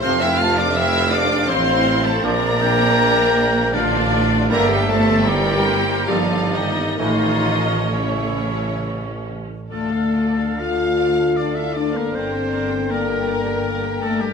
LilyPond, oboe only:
\new Staff \with { instrumentName = "Oboe" } { \time 3/4 \key d \minor \tempo 4 = 79 f''2 c''4 | d''8 g''4. f''8 r8 | e''4 d''8 c''8 d''4 | cis''2~ cis''8 r8 |
a'4 f''4 d''16 e''16 d''16 bes'16 | c''4 bes'4. a'16 g'16 | }